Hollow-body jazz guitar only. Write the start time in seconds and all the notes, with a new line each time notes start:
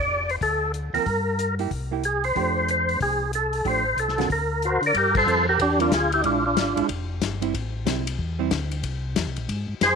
0.94 F3 A#3 C4
1.59 A#3 E4 G4
1.91 A#3 E4 G4
2.35 F3 A3 D4 G4
3.65 F3 A3 D4 G4
4.17 D3 C4 F#4 A#4
5.26 G3 C4 F4 A#4
5.79 G3 C4 F4 A#4
6.24 G#3 D4 E4
6.76 G#3 D4 E4
7.41 G3 C4 E4
7.86 G3 C4 E4
8.39 G3 C4 E4